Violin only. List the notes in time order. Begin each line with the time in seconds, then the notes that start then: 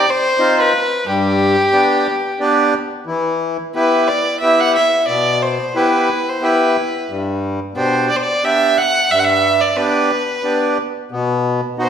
Already playing: D5
0.10 C5
0.60 B4
1.09 G4
3.76 B4
4.08 D5
4.41 E5
4.60 F#5
4.76 E5
5.08 D5
5.43 C5
5.77 B4
6.29 C5
6.45 B4
7.78 C5
8.10 D5
8.16 C5
8.23 D5
8.45 E5
8.77 F#5
9.11 E5
9.19 F#5
9.24 E5
9.61 D5
9.77 B4
11.82 C5